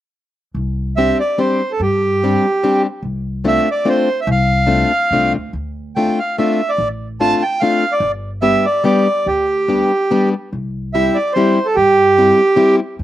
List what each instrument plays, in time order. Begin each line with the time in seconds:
0.54 upright bass C2
0.97 steel-string acoustic guitar G3 C4 D4 G4, accordion E5
1.20 accordion D5
1.38 steel-string acoustic guitar G3 C4 D4 G4, accordion C5
1.72 accordion A4
1.80 upright bass G2, accordion G4
2.24 steel-string acoustic guitar G3 C4 D4 G4
2.63 steel-string acoustic guitar G3 C4 D4 G4
3.02 upright bass C2
3.44 steel-string acoustic guitar A3 C4 D4 F4, accordion E5
3.71 accordion D5
3.85 steel-string acoustic guitar A3 C4 D4 F4
3.89 accordion C5
4.21 accordion E5
4.27 upright bass C2
4.31 accordion F5
4.67 steel-string acoustic guitar A3 C4 D4 F4
5.11 upright bass C2, steel-string acoustic guitar A3 C4 D4 F4
5.34 upright bass D2
5.53 upright bass D2
5.96 steel-string acoustic guitar A3 C4 D4 F4, accordion G5
6.19 accordion F5
6.38 steel-string acoustic guitar A3 C4 D4 F4, accordion E5
6.69 accordion D5
6.78 upright bass A1
7.20 steel-string acoustic guitar A3 C4 D4 F4, accordion A5
7.42 accordion G5
7.60 steel-string acoustic guitar A3 C4 D4 F4, accordion F5
7.92 accordion D5
8.00 upright bass G1
8.42 steel-string acoustic guitar G3 B3 D4 G4, accordion E5
8.66 accordion D5
8.84 steel-string acoustic guitar G3 B3 D4 G4, accordion D5
9.26 upright bass D2, accordion G4
9.68 steel-string acoustic guitar G3 B3 D4 G4
10.11 steel-string acoustic guitar G3 B3 D4 G4
10.53 upright bass C2
10.94 steel-string acoustic guitar G3 C4 E4 G4, accordion E5
11.15 accordion D5
11.33 steel-string acoustic guitar G3 C4, accordion C5
11.37 steel-string acoustic guitar E4 G4
11.65 accordion A4
11.76 upright bass G2, accordion G4
12.18 steel-string acoustic guitar G3 C4 E4 G4
12.56 steel-string acoustic guitar G3 C4 E4 G4
12.99 upright bass F2